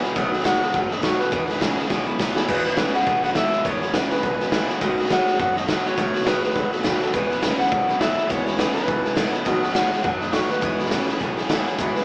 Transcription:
Already playing: E2 B2
0.03 E3 G#3 B3 E4, muted upright bass stroke, snare
0.15 B1 B2 D#3 F#3 A3 B3 F#4 D#5, kick, snare
0.32 A3 B3 F#4, snare
0.39 snare
0.44 B2 D#3 G#3 A3 B3 F#4 F#5, kick, snare, hi-hat pedal
0.61 A3 B3 F#4, muted upright bass stroke, snare
0.68 snare
0.73 F#1 B2 D#3 F#3 A3 B3 F#4 F#5, kick, snare
0.90 A3 B3 F#4 D#5, snare
1.02 B2 D#3 F#3 A3 B3 F#4 C#5, kick, snare, hi-hat pedal
1.19 A3 B3 F#4 B4, muted upright bass stroke, snare
1.31 E2 B2 E3 G#3 B3 E4, kick, snare
1.48 E3 G#3 B3 E4, snare
1.55 snare
1.61 E2 B2 C#3 E3 G#3 B3 E4, kick, snare, hi-hat pedal
1.78 E3 G#3 B3 E4, muted upright bass stroke, snare
1.84 snare
1.90 B1 E2 B2 E3 G#3 B3 E4, kick, snare
2.07 E3 G#3 B3 E4
2.19 E2 B2 E3 G#3 B3 E4, kick, snare, hi-hat pedal
2.36 E3 G#3 B3 E4 G#4, muted upright bass stroke, snare
2.48 E2 B2 E3 G#3 B3 E4 B4, kick, snare, crash
2.65 E3 G#3 B3 E4, snare
2.77 E2 B2 C#3 E3 G#3 B3 E4 B4, kick, snare, hi-hat pedal
2.94 E3 G#3 B3 E4 F#5, muted upright bass stroke, snare
3.00 snare
3.06 B1 E2 B2 E3 G#3 B3 E4, kick, snare
3.23 E3 G#3 B3 E4 F#5, snare
3.35 E2 B2 E3 G#3 B3 E4 E5, kick, snare, hi-hat pedal
3.52 E3 G#3 B3 E4, muted upright bass stroke, snare
3.65 E2 B2 E3 G#3 B3 E4 C#5, kick, snare
3.81 E3 G#3 B3 E4, snare
3.94 E2 B2 C#3 E3 G#3 B3 E4 B4, kick, snare, hi-hat pedal
4.11 E3 G#3 B3 E4 B4, muted upright bass stroke, snare
4.17 snare
4.22 B1 E2 B2 E3 G#3 B3 E4, kick, snare
4.40 E3 G#3 B3 E4, snare
4.52 E2 B2 E3 G#3 B3 E4, kick, snare, hi-hat pedal
4.69 E3 G#3 B3 E4, muted upright bass stroke, snare
4.81 B1 B2 D#3 F#3 A3 B3 F#4 D#5, kick, snare
4.98 A3 B3 F#4, snare
5.04 snare
5.09 B2 D#3 G#3 A3 B3 F#4 F#5, kick, snare, hi-hat pedal
5.26 A3 B3 F#4, muted upright bass stroke, snare
5.34 snare
5.39 F#2 B2 D#3 F#3 A3 B3 F#4 F#5, kick, snare
5.55 A3 B3 F#4 D#5, snare
5.68 B2 D#3 F#3 A3 B3 F#4, kick, snare, hi-hat pedal
5.85 A3 B3 F#4 C#5, muted upright bass stroke, snare
5.97 B1 B2 D#3 F#3 A3 B3 F#4, kick, snare
6.14 A3 B3 F#4, muted upright bass stroke, snare
6.21 snare
6.26 B1 B2 D#3 G#3 A3 B3 F#4 B4, kick, snare, hi-hat pedal
6.42 A3 B3 F#4 B4, muted upright bass stroke, snare
6.50 snare
6.54 C#2 B2 D#3 F#3 A3 B3 F#4, kick, snare
6.71 A3 B3 F#4, muted upright bass stroke, snare
6.83 D#2 B2 D#3 F#3 A3 B3 F#4, kick, snare, hi-hat pedal
7.00 A3 B3 F#4 A4, muted upright bass stroke, snare
7.13 E2 B2 E3 G#3 B3 E4 B4, kick, snare
7.30 E3 G#3 B3 E4, snare
7.42 E2 B2 C#3 E3 G#3 B3 E4 B4, kick, snare, hi-hat pedal
7.59 E3 G#3 B3 E4 F#5, muted upright bass stroke, snare
7.66 snare
7.71 B1 E2 B2 E3 G#3 B3 E4, kick, snare
7.88 E3 G#3 B3 E4, snare
8.00 E2 B2 E3 G#3 B3 E4 E5, kick, snare, hi-hat pedal
8.17 E3 G#3 B3 E4, muted upright bass stroke, snare
8.29 E2 B2 E3 G#3 B3 E4 C#5, kick, snare
8.46 E3 G#3 B3 E4 C#5, snare
8.58 E2 B2 C#3 E3 G#3 B3 E4 B4, kick, snare, hi-hat pedal
8.74 E3 G#3 B3 E4 B4, muted upright bass stroke, snare
8.82 snare
8.87 B1 E2 B2 E3 G#3 B3 E4, kick, snare
9.04 E3 G#3 B3 E4, snare
9.16 E2 B2 E3 G#3 B3 E4, kick, snare, hi-hat pedal
9.33 E3 G#3 B3 E4, muted upright bass stroke, snare
9.45 B1 B2 D#3 F#3 A3 B3 F#4 D#5, kick, snare
9.63 A3 B3 F#4, snare
9.69 snare
9.74 B2 D#3 G#3 A3 B3 F#4 F#5, kick, snare, hi-hat pedal
9.91 A3 B3 F#4, muted upright bass stroke, snare
9.98 snare
10.03 F#2 B2 D#3 F#3 A3 B3 F#5, kick, snare
10.07 F#4
10.21 A3 B3 F#4 D#5, snare
10.33 B2 D#3 F#3 A3 B3 F#4 C#5, kick, snare, hi-hat pedal
10.49 A3 B3 F#4 B4, muted upright bass stroke, snare
10.61 E2 B2 E3 G#3 B3 E4, kick, snare
10.78 E3 G#3 B3 E4, snare
10.85 snare
10.91 E2 B2 C#3 E3 G#3 B3 E4, kick, snare, hi-hat pedal
11.08 E3 G#3 B3 E4, muted upright bass stroke, snare
11.15 snare
11.20 B1 E2 B2 E3 G#3 B3 E4, kick, snare
11.37 E3 G#3 B3 E4, snare
11.49 E2 B2 E3 G#3 B3 E4, kick, snare, hi-hat pedal
11.66 E3 G#3 B3 E4, muted upright bass stroke, snare
11.78 E2 B2 E3 G#3 B3 E4, kick, snare
11.95 G#3 B3 E4 B4, muted upright bass stroke, snare
11.99 E3

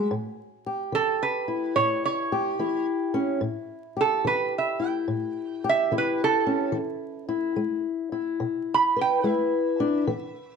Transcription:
Already playing: G#3
0.11 A2
0.66 G4
0.92 E3 A4
1.23 B4
1.48 E4
1.76 A2 C#5
2.05 C#5
2.32 G4
2.59 E3 E4
3.14 C#4
3.41 A2
3.97 G4
4.01 A4
4.25 E3 B4
4.58 E5
4.79 E4
4.86 G5
5.08 A2
5.64 G4
5.69 E5
5.92 E3 E4
5.98 B4
6.24 A4
6.47 C#4
6.72 E3
7.29 E4
7.56 G#3
8.12 E4
8.40 B2
8.74 B5
8.96 B4
9.01 G5
9.24 G#3 E4 E5
9.80 D4
10.07 E3

